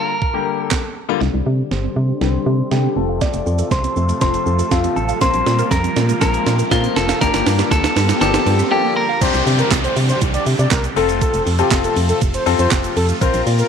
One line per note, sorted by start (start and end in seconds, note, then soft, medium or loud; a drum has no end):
0.00 0.11 D3 medium
0.00 0.11 G3 medium
0.00 0.11 A#3 medium
0.00 0.11 F4 medium
0.00 0.60 A#4 loud
0.22 kick loud
0.34 0.81 D3 medium
0.34 0.81 G3 medium
0.34 0.81 A#3 medium
0.34 0.81 G4 medium
0.60 0.92 A4 loud
0.71 kick loud
0.71 snare medium
0.71 clap loud
1.09 1.20 D3 loud
1.09 1.20 G3 medium
1.09 1.21 A#3 medium
1.09 1.22 F4 loud
1.21 1.29 C2 loud
1.21 7.18 C3 medium
1.21 1.84 D3 medium
1.21 2.95 D3 medium
1.21 1.84 G3 medium
1.21 1.28 G3 medium
1.21 2.95 G3 medium
1.21 1.85 C4 medium
1.21 2.95 D4 medium
1.21 2.95 G4 medium
1.21 1.71 D5 loud
1.21 snare medium
1.21 riser medium
1.34 1.42 C2 loud
1.34 1.41 C4 medium
1.46 1.63 C3 medium
1.46 1.53 D4 medium
1.59 1.65 G4 medium
1.71 1.88 G1 loud
1.71 2.18 C5 medium
1.71 snare medium
1.84 1.91 C4 medium
1.96 2.13 C3 medium
1.96 2.03 G3 medium
2.09 2.16 G3 medium
2.21 2.38 C2 loud
2.21 2.53 D3 medium
2.21 2.53 G3 medium
2.21 2.53 C4 medium
2.21 2.53 G4 medium
2.21 2.68 C5 loud
2.21 snare medium
2.46 2.63 C3 loud
2.46 2.53 D4 medium
2.59 2.66 G4 medium
2.71 2.88 C3 medium
2.71 2.96 D3 medium
2.71 2.96 G3 medium
2.71 2.78 G3 medium
2.71 2.95 C4 medium
2.71 2.96 G4 medium
2.71 2.97 G4 medium
2.71 snare medium
2.84 2.91 C4 medium
2.96 3.21 F1 loud
2.96 3.76 F3 medium
2.96 7.17 F3 medium
2.96 3.76 A3 medium
2.96 5.19 A3 medium
2.96 3.77 C4 medium
2.96 3.03 C4 medium
2.96 9.17 F4 medium
2.96 5.19 A4 medium
2.96 3.22 A4 medium
2.96 3.77 A4 medium
3.09 3.16 F5 medium
3.21 3.28 A3 medium
3.21 3.68 D5 loud
3.21 kick loud
3.21 snare medium
3.21 closed hi-hat medium
3.21 shaker medium
3.34 3.42 F1 loud
3.34 3.41 C4 medium
3.34 closed hi-hat soft
3.34 shaker soft
3.46 3.63 F2 loud
3.46 3.53 F4 medium
3.46 shaker medium
3.59 3.66 A4 loud
3.59 closed hi-hat medium
3.59 shaker medium
3.71 3.88 C2 loud
3.71 4.20 C5 medium
3.71 kick loud
3.71 snare medium
3.71 closed hi-hat medium
3.71 shaker medium
3.84 3.91 C4 medium
3.84 closed hi-hat medium
3.84 shaker medium
3.96 4.13 F2 loud
3.96 4.03 A3 medium
3.96 shaker medium
4.09 4.16 A3 medium
4.09 closed hi-hat medium
4.09 shaker medium
4.21 4.38 F1 loud
4.21 4.53 F3 medium
4.21 4.53 A3 medium
4.21 4.53 C4 medium
4.21 4.53 A4 medium
4.21 4.73 C5 loud
4.21 kick loud
4.21 snare medium
4.21 closed hi-hat medium
4.21 shaker medium
4.34 closed hi-hat medium
4.34 shaker medium
4.46 4.63 F2 loud
4.46 4.53 F4 medium
4.46 shaker medium
4.59 4.66 A4 medium
4.59 closed hi-hat medium
4.59 shaker medium
4.71 4.88 F2 loud
4.71 5.03 F3 medium
4.71 4.78 A3 medium
4.71 5.03 A3 medium
4.71 5.03 C4 medium
4.71 4.97 F4 medium
4.71 5.03 A4 medium
4.71 kick loud
4.71 snare medium
4.71 closed hi-hat medium
4.71 shaker medium
4.84 4.91 C4 medium
4.84 closed hi-hat medium
4.84 shaker soft
4.96 5.13 A1 medium
4.96 5.03 C4 medium
4.96 5.21 A4 medium
4.96 shaker soft
5.09 5.15 F5 medium
5.09 closed hi-hat soft
5.09 shaker medium
5.21 5.30 A#1 loud
5.21 5.84 F3 medium
5.21 5.84 A#3 medium
5.21 5.28 A#3 medium
5.21 7.20 A#3 medium
5.21 5.85 C4 medium
5.21 5.85 A#4 medium
5.21 5.71 C5 loud
5.21 kick loud
5.21 snare medium
5.21 closed hi-hat medium
5.21 shaker medium
5.34 5.42 A#1 loud
5.34 5.41 C4 medium
5.34 closed hi-hat soft
5.34 shaker soft
5.34 shaker medium
5.46 5.63 A#2 loud
5.46 5.53 F4 medium
5.46 snare medium
5.46 shaker soft
5.46 shaker medium
5.59 5.66 A#4 loud
5.59 closed hi-hat medium
5.59 shaker medium
5.59 shaker soft
5.71 5.88 F2 loud
5.71 6.20 A#4 medium
5.71 kick loud
5.71 snare medium
5.71 closed hi-hat medium
5.71 shaker medium
5.84 5.91 C4 medium
5.84 closed hi-hat medium
5.84 shaker medium
5.96 6.13 A#2 loud
5.96 6.03 A#3 medium
5.96 snare medium
5.96 shaker medium
6.09 6.16 A#3 medium
6.09 closed hi-hat medium
6.09 shaker medium
6.21 6.38 A#1 loud
6.21 6.53 F3 medium
6.21 6.53 A#3 medium
6.21 6.53 C4 medium
6.21 6.73 A#4 medium
6.21 6.53 A#4 medium
6.21 kick loud
6.21 snare medium
6.21 closed hi-hat medium
6.21 shaker medium
6.34 closed hi-hat medium
6.34 shaker medium
6.46 6.63 A#2 loud
6.46 6.53 F4 medium
6.46 snare loud
6.46 shaker medium
6.59 6.65 A#4 medium
6.59 closed hi-hat medium
6.59 shaker soft
6.59 shaker medium
6.71 6.88 A#2 loud
6.71 7.03 F3 medium
6.71 7.03 A#3 medium
6.71 6.78 A#3 medium
6.71 7.03 C4 medium
6.71 6.95 F4 medium
6.71 7.03 A#4 medium
6.71 kick loud
6.71 snare loud
6.71 closed hi-hat medium
6.71 shaker medium
6.84 6.91 C4 medium
6.84 closed hi-hat medium
6.84 shaker medium
6.96 7.13 F1 medium
6.96 7.03 C4 medium
6.96 7.21 A4 medium
6.96 snare loud
6.96 shaker medium
7.09 7.16 F5 loud
7.09 snare loud
7.09 closed hi-hat medium
7.09 shaker medium
7.09 shaker soft
7.21 7.30 G1 loud
7.21 9.19 D3 medium
7.21 7.84 F3 medium
7.21 9.19 G3 medium
7.21 7.28 G3 medium
7.21 9.19 A#3 medium
7.21 7.85 A#3 medium
7.21 7.85 D4 medium
7.21 9.19 G4 medium
7.21 7.85 G4 medium
7.21 7.71 A#4 medium
7.21 kick loud
7.21 snare loud
7.21 closed hi-hat medium
7.21 shaker medium
7.34 7.42 G1 loud
7.34 7.40 A#3 medium
7.34 snare loud
7.34 closed hi-hat soft
7.34 shaker soft
7.34 shaker medium
7.46 7.63 G2 loud
7.46 7.53 F4 medium
7.46 snare loud
7.46 open hi-hat medium
7.46 shaker soft
7.46 shaker medium
7.59 7.65 G4 loud
7.59 snare loud
7.59 closed hi-hat medium
7.59 shaker medium
7.59 shaker soft
7.71 7.88 D2 loud
7.71 8.20 A4 medium
7.71 kick loud
7.71 snare loud
7.71 closed hi-hat medium
7.71 shaker medium
7.84 7.91 A#3 medium
7.84 snare loud
7.84 closed hi-hat medium
7.84 shaker medium
7.96 8.13 G2 loud
7.96 8.03 G3 medium
7.96 snare loud
7.96 open hi-hat medium
7.96 shaker medium
8.09 8.15 G3 medium
8.09 snare loud
8.09 closed hi-hat medium
8.09 shaker medium
8.21 8.38 G1 loud
8.21 8.53 F3 medium
8.21 8.53 A#3 medium
8.21 8.53 D4 medium
8.21 8.53 G4 medium
8.21 8.71 A4 medium
8.21 snare loud
8.21 closed hi-hat medium
8.21 shaker medium
8.34 snare loud
8.34 closed hi-hat medium
8.34 shaker medium
8.46 8.63 G2 loud
8.46 8.53 F4 medium
8.46 open hi-hat medium
8.46 shaker soft
8.46 shaker medium
8.59 8.66 G4 medium
8.59 closed hi-hat medium
8.59 shaker soft
8.59 shaker medium
8.71 9.03 F3 medium
8.71 8.78 G3 medium
8.71 9.03 A#3 medium
8.71 9.03 D4 medium
8.71 8.96 G4 medium
8.71 9.03 A4 medium
8.84 8.91 A#3 medium
8.96 9.03 A#3 medium
8.96 9.20 A#4 medium
9.09 9.16 F5 loud
9.21 9.30 C2 loud
9.21 13.68 C3 medium
9.21 10.95 D3 medium
9.21 10.95 G3 medium
9.21 9.84 C4 medium
9.21 9.85 D4 medium
9.21 10.95 D4 medium
9.21 10.95 G4 medium
9.21 9.85 G4 medium
9.21 9.42 C5 loud
9.21 kick loud
9.21 closed hi-hat medium
9.21 crash loud
9.21 downlifter medium
9.21 shaker medium
9.34 9.42 C2 loud
9.34 closed hi-hat soft
9.34 shaker soft
9.34 shaker medium
9.46 9.63 C3 loud
9.46 open hi-hat medium
9.46 shaker medium
9.59 9.69 A#4 medium
9.59 closed hi-hat medium
9.59 shaker medium
9.59 shaker soft
9.71 9.88 C2 loud
9.71 kick loud
9.71 snare loud
9.71 clap loud
9.71 closed hi-hat medium
9.71 shaker medium
9.84 9.94 C5 medium
9.84 closed hi-hat medium
9.84 shaker medium
9.96 10.13 C3 loud
9.96 open hi-hat medium
9.96 shaker medium
10.09 10.19 C5 medium
10.09 closed hi-hat medium
10.09 shaker medium
10.21 10.38 C2 loud
10.21 kick loud
10.21 closed hi-hat medium
10.21 shaker medium
10.34 10.44 D5 medium
10.34 closed hi-hat medium
10.34 shaker medium
10.46 10.55 C3 loud
10.46 open hi-hat medium
10.46 shaker medium
10.59 10.67 C3 loud
10.59 10.69 D5 medium
10.59 closed hi-hat medium
10.59 shaker soft
10.59 shaker medium
10.71 10.88 C2 loud
10.71 10.82 A#4 medium
10.71 kick loud
10.71 snare loud
10.71 clap loud
10.71 closed hi-hat medium
10.71 shaker medium
10.84 closed hi-hat medium
10.84 shaker medium
10.96 11.21 F1 loud
10.96 13.68 F3 medium
10.96 13.19 A3 medium
10.96 11.46 C4 medium
10.96 11.46 F4 medium
10.96 13.68 F4 medium
10.96 13.19 A4 medium
10.96 11.07 A4 medium
10.96 11.47 A4 medium
10.96 open hi-hat medium
10.96 shaker medium
10.96 shaker soft
11.09 closed hi-hat medium
11.09 shaker medium
11.21 11.42 A4 loud
11.21 kick loud
11.21 closed hi-hat medium
11.21 shaker medium
11.34 11.42 F1 loud
11.34 closed hi-hat soft
11.34 shaker soft
11.34 shaker medium
11.47 11.63 F2 medium
11.47 open hi-hat medium
11.47 shaker medium
11.59 11.67 C4 medium
11.59 11.67 F4 medium
11.59 11.69 G4 medium
11.59 11.67 A4 medium
11.59 closed hi-hat medium
11.59 shaker medium
11.59 shaker soft
11.71 11.88 F1 loud
11.71 12.19 C4 medium
11.71 12.19 F4 medium
11.71 12.19 A4 medium
11.71 kick loud
11.71 snare loud
11.71 clap loud
11.71 closed hi-hat medium
11.71 shaker medium
11.84 11.94 A4 medium
11.84 closed hi-hat medium
11.84 shaker medium
11.96 12.13 F2 loud
11.96 open hi-hat medium
11.96 shaker medium
12.09 12.19 A4 medium
12.09 closed hi-hat medium
12.09 shaker medium
12.09 shaker soft
12.21 12.38 F1 loud
12.21 kick loud
12.21 closed hi-hat medium
12.21 shaker medium
12.34 12.44 C5 medium
12.34 closed hi-hat medium
12.34 shaker medium
12.46 12.55 F2 loud
12.46 12.94 C4 medium
12.46 12.94 F4 medium
12.46 12.94 A4 loud
12.46 open hi-hat medium
12.46 shaker medium
12.59 12.67 F2 medium
12.59 12.69 C5 medium
12.59 closed hi-hat medium
12.59 shaker soft
12.59 shaker medium
12.71 12.88 F1 medium
12.71 kick loud
12.71 snare loud
12.71 clap loud
12.71 closed hi-hat medium
12.71 shaker medium
12.84 closed hi-hat medium
12.84 shaker medium
12.96 13.13 F2 medium
12.96 13.07 A4 medium
12.96 open hi-hat medium
12.96 shaker medium
12.96 shaker soft
13.09 closed hi-hat medium
13.09 shaker medium
13.21 13.30 A#1 loud
13.21 13.68 A#3 medium
13.21 13.68 C4 medium
13.21 13.68 F4 medium
13.21 13.68 A#4 medium
13.21 13.42 C5 loud
13.21 kick loud
13.21 closed hi-hat medium
13.21 shaker medium
13.34 13.42 A#1 loud
13.34 closed hi-hat soft
13.34 shaker soft
13.34 shaker medium
13.47 13.63 A#2 loud
13.47 open hi-hat medium
13.47 shaker medium
13.59 13.68 A#4 medium
13.59 closed hi-hat medium
13.59 shaker medium
13.59 shaker soft